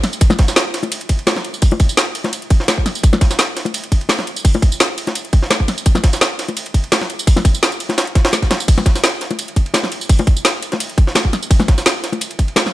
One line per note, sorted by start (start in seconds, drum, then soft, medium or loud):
0.04 snare medium
0.04 closed hi-hat medium
0.04 ride medium
0.13 tambourine medium
0.21 kick loud
0.21 closed hi-hat medium
0.21 ride medium
0.21 tambourine soft
0.30 snare medium
0.30 closed hi-hat soft
0.30 high bongo loud
0.39 kick loud
0.39 snare soft
0.39 closed hi-hat medium
0.39 ride medium
0.48 snare soft
0.48 tambourine medium
0.56 snare loud
0.56 closed hi-hat medium
0.56 ride medium
0.56 tambourine soft
0.74 snare soft
0.74 closed hi-hat medium
0.74 ride medium
0.74 tambourine soft
0.83 closed hi-hat soft
0.83 ride soft
0.83 high bongo medium
0.92 closed hi-hat medium
0.92 ride medium
0.92 tambourine soft
1.01 closed hi-hat soft
1.01 ride soft
1.09 kick medium
1.09 closed hi-hat medium
1.09 ride medium
1.19 ride soft
1.27 snare loud
1.27 closed hi-hat medium
1.27 ride medium
1.27 tambourine soft
1.27 high bongo loud
1.36 snare medium
1.36 snare soft
1.45 closed hi-hat medium
1.45 ride medium
1.54 tambourine medium
1.62 kick loud
1.62 closed hi-hat medium
1.62 open hi-hat medium
1.62 tambourine soft
1.71 closed hi-hat soft
1.71 high bongo medium
1.80 kick loud
1.80 closed hi-hat medium
1.80 ride medium
1.80 tambourine soft
1.89 tambourine medium
1.97 snare loud
1.97 closed hi-hat medium
1.97 ride medium
1.97 tambourine soft
2.15 closed hi-hat medium
2.15 ride medium
2.15 tambourine soft
2.24 snare soft
2.24 closed hi-hat soft
2.24 high bongo medium
2.33 closed hi-hat medium
2.33 ride medium
2.33 tambourine soft
2.42 closed hi-hat soft
2.50 kick loud
2.50 closed hi-hat medium
2.50 ride medium
2.60 snare soft
2.68 snare loud
2.68 closed hi-hat medium
2.68 ride medium
2.68 tambourine medium
2.68 high bongo loud
2.78 kick medium
2.86 snare medium
2.86 closed hi-hat medium
2.86 ride medium
2.95 tambourine medium
3.03 kick loud
3.03 closed hi-hat medium
3.03 ride medium
3.03 tambourine soft
3.13 snare medium
3.13 closed hi-hat soft
3.13 high bongo loud
3.21 kick loud
3.21 snare soft
3.21 closed hi-hat medium
3.21 ride medium
3.31 snare medium
3.31 tambourine medium
3.39 snare loud
3.39 closed hi-hat medium
3.39 ride medium
3.39 tambourine soft
3.57 snare soft
3.57 closed hi-hat medium
3.57 ride medium
3.57 tambourine soft
3.65 closed hi-hat soft
3.65 ride soft
3.65 high bongo medium
3.74 closed hi-hat medium
3.74 ride medium
3.74 tambourine soft
3.84 closed hi-hat soft
3.84 ride soft
3.92 kick medium
3.92 closed hi-hat medium
3.92 ride medium
4.01 ride soft
4.09 snare loud
4.09 closed hi-hat medium
4.09 ride medium
4.09 tambourine soft
4.09 high bongo medium
4.19 snare medium
4.19 snare soft
4.27 closed hi-hat medium
4.27 ride medium
4.36 tambourine medium
4.45 kick loud
4.45 closed hi-hat medium
4.45 open hi-hat medium
4.45 tambourine medium
4.54 closed hi-hat soft
4.54 high bongo medium
4.62 kick loud
4.62 closed hi-hat medium
4.62 ride medium
4.72 tambourine medium
4.80 snare loud
4.80 closed hi-hat loud
4.80 ride medium
4.80 tambourine medium
4.98 closed hi-hat medium
4.98 ride medium
4.98 tambourine soft
5.07 snare soft
5.07 closed hi-hat soft
5.07 high bongo medium
5.15 closed hi-hat loud
5.15 ride medium
5.15 tambourine medium
5.25 closed hi-hat soft
5.33 kick loud
5.33 closed hi-hat medium
5.33 ride medium
5.42 snare soft
5.50 snare loud
5.50 closed hi-hat medium
5.50 ride medium
5.50 tambourine medium
5.50 high bongo medium
5.60 kick medium
5.68 snare medium
5.68 closed hi-hat medium
5.68 ride medium
5.78 tambourine medium
5.86 kick loud
5.86 closed hi-hat medium
5.86 ride medium
5.86 tambourine medium
5.95 snare medium
5.95 closed hi-hat soft
5.95 high bongo medium
6.04 kick loud
6.04 snare soft
6.04 closed hi-hat medium
6.04 ride medium
6.13 snare soft
6.13 tambourine medium
6.21 snare loud
6.21 closed hi-hat loud
6.21 ride medium
6.21 tambourine medium
6.39 snare soft
6.39 closed hi-hat medium
6.39 ride medium
6.39 tambourine soft
6.48 closed hi-hat soft
6.48 ride soft
6.48 high bongo medium
6.57 closed hi-hat medium
6.57 ride medium
6.57 tambourine medium
6.66 closed hi-hat soft
6.66 ride soft
6.74 kick medium
6.74 closed hi-hat medium
6.74 ride medium
6.84 ride soft
6.92 snare loud
6.92 closed hi-hat loud
6.92 ride medium
6.92 tambourine medium
6.92 high bongo medium
7.01 snare medium
7.01 snare soft
7.10 closed hi-hat medium
7.10 ride medium
7.19 tambourine medium
7.27 kick loud
7.27 closed hi-hat medium
7.27 open hi-hat medium
7.27 tambourine medium
7.36 snare medium
7.36 closed hi-hat soft
7.36 high bongo medium
7.45 kick loud
7.45 closed hi-hat medium
7.45 ride medium
7.45 tambourine soft
7.55 tambourine medium
7.63 snare loud
7.63 closed hi-hat loud
7.63 ride medium
7.63 tambourine medium
7.72 closed hi-hat soft
7.72 tambourine soft
7.80 closed hi-hat medium
7.80 ride medium
7.80 tambourine soft
7.89 snare medium
7.89 closed hi-hat soft
7.89 high bongo medium
7.98 snare loud
7.98 closed hi-hat loud
7.98 ride medium
7.98 tambourine medium
8.07 closed hi-hat soft
8.15 kick loud
8.15 snare soft
8.15 closed hi-hat medium
8.15 ride medium
8.25 snare loud
8.25 ride medium
8.33 snare loud
8.33 closed hi-hat loud
8.33 tambourine medium
8.33 high bongo medium
8.42 kick medium
8.42 snare soft
8.42 ride medium
8.51 snare loud
8.51 snare medium
8.51 closed hi-hat medium
8.51 ride medium
8.60 tambourine medium
8.68 kick loud
8.68 closed hi-hat loud
8.68 crash medium
8.68 ride medium
8.68 tambourine soft
8.78 snare medium
8.78 closed hi-hat soft
8.78 high bongo loud
8.86 kick loud
8.86 snare soft
8.86 closed hi-hat medium
8.86 ride medium
8.95 snare soft
8.95 tambourine medium
9.04 snare loud
9.04 closed hi-hat loud
9.04 ride medium
9.04 tambourine soft
9.21 snare soft
9.21 closed hi-hat medium
9.21 ride medium
9.21 tambourine soft
9.31 closed hi-hat soft
9.31 ride soft
9.31 high bongo medium
9.39 closed hi-hat loud
9.39 ride medium
9.39 tambourine soft
9.48 closed hi-hat soft
9.48 ride soft
9.56 kick medium
9.56 closed hi-hat medium
9.56 ride medium
9.66 ride soft
9.74 snare loud
9.74 closed hi-hat loud
9.74 ride medium
9.74 tambourine soft
9.74 high bongo medium
9.84 snare medium
9.84 snare soft
9.92 closed hi-hat medium
9.92 ride medium
10.01 tambourine medium
10.09 kick loud
10.09 closed hi-hat medium
10.09 open hi-hat medium
10.09 tambourine soft
10.19 closed hi-hat soft
10.19 high bongo medium
10.27 kick loud
10.27 closed hi-hat medium
10.27 ride medium
10.37 tambourine medium
10.45 snare loud
10.45 closed hi-hat medium
10.45 ride medium
10.45 tambourine soft
10.62 closed hi-hat medium
10.62 ride medium
10.62 tambourine soft
10.72 snare soft
10.72 closed hi-hat soft
10.72 high bongo medium
10.80 closed hi-hat loud
10.80 ride medium
10.80 tambourine soft
10.90 closed hi-hat soft
10.98 kick loud
10.98 closed hi-hat medium
10.98 ride medium
11.07 snare soft
11.15 snare loud
11.15 closed hi-hat loud
11.15 ride medium
11.15 tambourine soft
11.15 high bongo loud
11.25 kick medium
11.33 snare medium
11.33 closed hi-hat medium
11.33 ride medium
11.42 tambourine medium
11.51 kick loud
11.51 closed hi-hat medium
11.51 ride medium
11.51 tambourine soft
11.60 snare medium
11.60 closed hi-hat soft
11.60 high bongo loud
11.68 kick loud
11.68 snare soft
11.68 closed hi-hat medium
11.68 ride medium
11.78 snare soft
11.78 tambourine medium
11.86 snare loud
11.86 closed hi-hat medium
11.86 ride medium
11.86 tambourine soft
12.04 snare soft
12.04 closed hi-hat medium
12.04 ride medium
12.04 tambourine soft
12.12 closed hi-hat soft
12.12 ride soft
12.12 high bongo medium
12.21 closed hi-hat loud
12.21 ride medium
12.21 tambourine soft
12.31 closed hi-hat soft
12.31 ride soft
12.39 kick medium
12.39 closed hi-hat medium
12.39 ride medium
12.48 ride soft
12.56 snare loud
12.56 closed hi-hat medium
12.56 ride medium
12.56 tambourine soft
12.56 high bongo loud
12.66 snare medium
12.66 snare soft